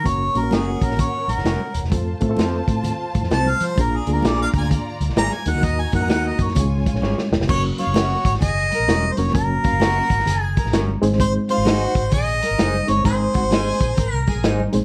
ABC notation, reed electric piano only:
X:1
M:4/4
L:1/16
Q:"Swing" 1/4=129
K:F#
V:1 name="Reed electric piano"
[A,CFA]2 [A,CFA] [A,CFA]6 z6 z | [=A,=C=F=A]2 [A,CFA] [A,CFA]6 z6 z | [A,=DEG]2 [A,DEG] [A,DEG]6 z4 z [A,^DFA]2- | [A,DFA] z [A,DFA] [A,DFA]4- [A,DFA] [G,CEG]6 z2 |
[F,A,CFA]6 z8 [F,A,CFA]2 | [F,A,CFA]6 z8 [G,^B,DG^B]2- | [G,^B,DG^B]4 z8 z2 [G,B,DGB]2 | [G,^B,DG^B]6 z8 [G,B,DGB]2 |]